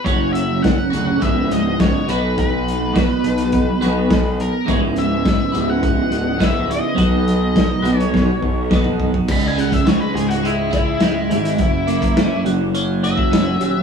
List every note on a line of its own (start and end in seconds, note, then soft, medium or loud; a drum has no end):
0.04 0.73 F#1 medium
0.04 0.90 F#2 medium
0.04 0.90 C#3 medium
0.04 0.91 F#3 medium
0.04 0.91 C#4 loud
0.04 0.89 F#4 loud
0.04 0.33 C#5 medium
0.04 kick loud
0.04 closed hi-hat medium
0.33 0.63 E5 medium
0.33 closed hi-hat medium
0.62 1.22 F#5 medium
0.62 kick loud
0.62 snare loud
0.62 closed hi-hat medium
0.90 1.15 D1 medium
0.90 1.18 F#2 medium
0.90 1.19 C#3 medium
0.90 1.19 F#3 medium
0.90 1.21 C#4 medium
0.90 1.18 F#4 medium
0.90 closed hi-hat medium
1.19 1.44 C#1 loud
1.19 2.04 C#2 medium
1.19 2.05 G#2 loud
1.19 2.05 C#3 loud
1.19 2.06 G#3 medium
1.19 2.09 B3 loud
1.19 2.06 E4 medium
1.19 1.51 E5 medium
1.19 kick medium
1.19 closed hi-hat medium
1.50 1.95 C#1 medium
1.50 1.80 D#5 medium
1.50 snare soft
1.50 closed hi-hat medium
1.80 2.09 C#5 medium
1.80 kick loud
1.80 snare loud
1.80 closed hi-hat medium
2.07 2.98 B1 loud
2.07 2.92 B2 medium
2.07 2.92 F#3 medium
2.07 2.94 B3 medium
2.07 2.93 D#4 medium
2.07 2.93 F#4 medium
2.07 2.38 B4 medium
2.07 closed hi-hat medium
2.11 2.96 B4 loud
2.38 4.41 B4 medium
2.38 kick loud
2.38 closed hi-hat medium
2.68 closed hi-hat medium
2.93 3.78 B2 medium
2.93 3.78 F#3 medium
2.93 3.84 B3 medium
2.93 3.79 D#4 medium
2.93 3.80 F#4 medium
2.93 3.81 B4 medium
2.93 kick loud
2.93 snare loud
2.93 closed hi-hat medium
3.24 3.68 B1 medium
3.24 closed hi-hat medium
3.38 closed hi-hat medium
3.52 kick loud
3.52 closed hi-hat medium
3.81 4.48 B1 medium
3.81 4.39 B2 medium
3.81 4.38 F#3 medium
3.81 4.66 B3 medium
3.81 4.38 D#4 medium
3.81 4.37 F#4 medium
3.81 4.68 B4 medium
3.81 snare soft
3.81 closed hi-hat medium
4.10 kick loud
4.10 snare loud
4.10 closed hi-hat medium
4.40 4.69 A#4 medium
4.40 closed hi-hat medium
4.65 5.35 C#1 loud
4.65 5.51 C#2 medium
4.65 5.51 G#2 medium
4.65 5.52 C#3 medium
4.65 5.52 G#3 loud
4.65 5.53 B3 medium
4.65 kick loud
4.65 closed hi-hat medium
4.69 5.51 E4 loud
4.69 4.77 C#5 loud
4.96 5.71 E5 medium
4.96 closed hi-hat medium
5.26 kick loud
5.26 snare loud
5.26 closed hi-hat medium
5.52 5.99 C#1 medium
5.52 6.38 G#2 medium
5.52 6.38 C#3 medium
5.52 6.39 G#3 medium
5.52 6.38 B3 medium
5.52 6.38 E4 medium
5.52 closed hi-hat medium
5.56 6.36 C#2 medium
5.70 6.43 F#5 medium
5.83 kick loud
5.83 closed hi-hat medium
6.10 6.78 C#1 medium
6.10 closed hi-hat medium
6.37 6.94 C#2 medium
6.37 6.95 G#2 medium
6.37 6.95 C#3 medium
6.37 6.96 G#3 medium
6.37 6.95 B3 medium
6.37 kick loud
6.41 6.97 E4 medium
6.41 6.71 E5 medium
6.41 snare loud
6.41 closed hi-hat medium
6.71 7.99 D#5 medium
6.71 closed hi-hat medium
6.94 7.65 B1 medium
6.94 7.81 B2 medium
6.94 7.81 F#3 medium
6.94 7.82 B3 medium
6.94 7.82 D#4 loud
6.94 7.82 F#4 medium
6.94 7.81 B4 medium
6.94 kick loud
6.94 closed hi-hat medium
7.28 closed hi-hat medium
7.56 kick loud
7.56 snare loud
7.56 closed hi-hat medium
7.82 8.28 B1 medium
7.82 8.68 B2 medium
7.82 8.70 F#3 medium
7.82 8.70 B3 medium
7.82 8.69 D#4 medium
7.82 8.69 F#4 medium
7.82 8.68 B4 medium
7.82 closed hi-hat medium
7.99 8.68 C#5 medium
7.99 closed hi-hat medium
8.14 kick loud
8.14 snare medium
8.42 9.09 B1 medium
8.42 kick medium
8.70 9.26 B2 medium
8.70 9.27 F#3 medium
8.70 9.27 B3 medium
8.70 9.27 D#4 medium
8.70 9.28 F#4 medium
8.70 9.28 B4 medium
8.70 kick loud
8.70 snare medium
8.84 mid tom medium
9.00 kick medium
9.14 kick medium
9.27 10.72 C#2 medium
9.27 9.96 C#2 medium
9.27 kick loud
9.27 crash loud
9.32 9.44 B5 loud
9.48 9.59 G#5 medium
9.57 11.02 C#3 medium
9.57 9.73 F#5 medium
9.57 closed hi-hat medium
9.72 9.88 E5 medium
9.72 kick medium
9.72 closed hi-hat medium
9.85 10.42 G#3 medium
9.85 10.01 C#5 medium
9.85 snare loud
9.85 closed hi-hat medium
10.00 10.14 B4 medium
10.14 11.31 C#2 medium
10.14 11.29 G#2 medium
10.14 10.29 G#4 medium
10.14 closed hi-hat medium
10.28 10.46 F#4 medium
10.28 closed hi-hat medium
10.43 11.00 G#3 medium
10.43 10.72 E4 medium
10.43 closed hi-hat medium
10.71 11.58 E4 medium
10.71 12.42 E4 medium
10.71 kick medium
10.71 closed hi-hat medium
11.00 11.59 G#3 medium
11.00 snare loud
11.00 closed hi-hat medium
11.30 11.52 G#1 loud
11.30 11.59 G#2 medium
11.30 closed hi-hat medium
11.45 closed hi-hat medium
11.58 12.26 F#1 loud
11.58 13.03 F#2 medium
11.58 kick loud
11.58 closed hi-hat medium
11.87 13.31 A#3 medium
11.87 closed hi-hat medium
12.02 kick medium
12.02 closed hi-hat medium
12.17 12.74 C#4 medium
12.17 snare loud
12.17 closed hi-hat medium
12.44 13.60 F#1 medium
12.44 13.60 F#3 medium
12.44 closed hi-hat medium
12.74 13.31 C#4 medium
12.74 closed hi-hat medium
13.04 13.83 F#4 medium
13.04 13.83 E5 medium
13.04 closed hi-hat medium
13.18 kick medium
13.31 13.83 C#4 medium
13.31 snare loud
13.31 closed hi-hat medium
13.60 13.82 D#1 loud
13.60 13.83 F#3 medium
13.60 closed hi-hat medium